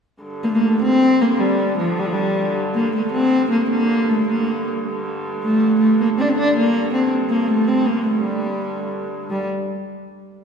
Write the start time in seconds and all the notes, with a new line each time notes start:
0.23 G2 D3
0.43 A3 A#3
0.55 A#3
0.64 A3
0.82 C4
1.21 A#3
1.40 G3
1.79 F3
1.99 G3
2.06 F3
2.13 G3
2.75 A#3
2.94 A3
2.99 A#3
3.04 A3
3.13 C4
3.51 A#3
3.70 A#3
4.09 A3
4.28 A#3
4.84 G2 D3
5.43 A3
5.80 A3
6.00 A#3
6.18 C4 D4
6.29 C4
6.38 D4
6.57 A#3
6.94 C4
7.30 A#3
7.48 A3
7.68 C4
7.86 A#3
8.04 A3
8.21 G3
9.30 G3